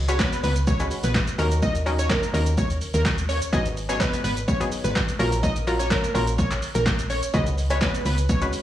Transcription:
Already playing: C#2
0.08 G#3 C#4 F#4 B4 C#5, closed hi-hat, shaker
0.19 B4, kick, snare, clap, shaker
0.33 closed hi-hat, shaker
0.44 C#2 B4, open hi-hat, shaker
0.56 closed hi-hat, shaker
0.67 C#5, kick, shaker
0.80 G#3 C#4 F#4 B4, closed hi-hat, shaker
0.91 open hi-hat, shaker
1.04 A#1 B4, closed hi-hat, shaker
1.14 kick, snare, clap, shaker
1.27 closed hi-hat, shaker
1.38 D#2 F#3 C#4 D#4 A#4, open hi-hat, shaker
1.52 closed hi-hat, shaker
1.63 D#5, kick, shaker
1.75 closed hi-hat, shaker
1.86 F#3 C#4 D#4 A#4, open hi-hat, shaker
1.99 C#5, closed hi-hat, shaker
2.10 A#4, kick, snare, clap, shaker
2.23 closed hi-hat, shaker
2.33 D#2 F#3 C#4 D#4 A#4, open hi-hat, shaker
2.46 closed hi-hat, shaker
2.58 C#5, kick, shaker
2.70 closed hi-hat, shaker
2.81 open hi-hat, shaker
2.94 D#2 A#4, closed hi-hat, shaker
3.05 kick, snare, clap, shaker
3.18 closed hi-hat, shaker
3.29 C#5, open hi-hat, shaker
3.42 closed hi-hat, shaker
3.53 G#1 F#3 B3 D#4 G#4 D#5, kick, shaker
3.66 closed hi-hat, shaker
3.77 open hi-hat, shaker
3.89 F#3 B3 D#4 G#4 C#5, closed hi-hat, shaker
4.00 B4, kick, snare, clap, shaker
4.14 closed hi-hat, shaker
4.24 G#1 B4, open hi-hat, shaker
4.37 closed hi-hat, shaker
4.48 C#5, kick, shaker
4.60 F#3 B3 D#4 G#4, closed hi-hat, shaker
4.72 open hi-hat, shaker
4.84 G#1 B4, closed hi-hat, shaker
4.95 kick, snare, clap, shaker
5.08 closed hi-hat, shaker
5.19 A#1 F#3 C#4 F4 A#4, open hi-hat, shaker
5.32 closed hi-hat, shaker
5.43 D#5, kick, shaker
5.56 closed hi-hat, shaker
5.67 F#3 C#4 F4 A#4, open hi-hat, shaker
5.79 C#5, closed hi-hat, shaker
5.90 A#4, kick, snare, clap, shaker
6.04 closed hi-hat, shaker
6.14 A#1 F#3 C#4 F4 A#4, open hi-hat, shaker
6.27 closed hi-hat, shaker
6.38 C#5, kick, shaker
6.51 clap, closed hi-hat, shaker
6.62 open hi-hat, shaker
6.75 A#1 A#4, closed hi-hat, shaker
6.86 kick, snare, clap, shaker
6.99 closed hi-hat, shaker
7.10 C#5, open hi-hat, shaker
7.23 closed hi-hat, shaker
7.34 C#2 G#3 C#4 F#4 B4 D#5, kick, shaker
7.47 closed hi-hat, shaker
7.58 open hi-hat, shaker
7.70 G#3 C#4 F#4 B4 C#5, closed hi-hat, shaker
7.81 B4, kick, snare, clap, shaker
7.95 closed hi-hat, shaker
8.05 C#2 B4, open hi-hat, shaker
8.18 closed hi-hat, shaker
8.29 C#5, kick, shaker
8.42 G#3 C#4 F#4 B4, closed hi-hat, shaker
8.53 open hi-hat, shaker

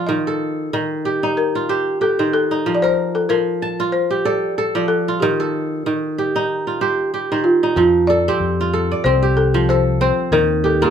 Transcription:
Already playing: F3 F4 A4 D5
0.07 D#3 D#5
0.27 A4
0.73 D#3
1.05 G4
1.23 D#4
1.37 A#4
1.55 F4
1.69 G4 C5
2.01 G4 A4
2.19 D#3 C5
2.34 A4
2.51 D#4
2.66 F3
2.75 D5
2.82 A#4 C5
3.15 A4
3.29 F3 A#4
3.62 A5
3.80 F4
3.92 C5
4.11 G4
4.25 A4 D5
4.58 A4
4.75 F3 D5
4.88 A4
5.08 F4
5.20 D#3 G4
5.40 A4
5.86 D#3
6.18 G4
6.36 D#4
6.67 F4
6.81 G4 C5
7.14 G4
7.32 D#3 C5
7.44 F4
7.63 D#4
7.76 F2 F3 F4
8.07 A4 D5
8.28 C4 G4
8.40 F2
8.61 F4
8.73 A4
8.92 D5
9.04 C2 C4 C5
9.23 G4
9.37 A4
9.54 F3
9.69 A4 C5
10.01 C4 C5
10.31 D#2 D#3 A#4
10.64 G4 A4
10.82 A#3 F4 G4

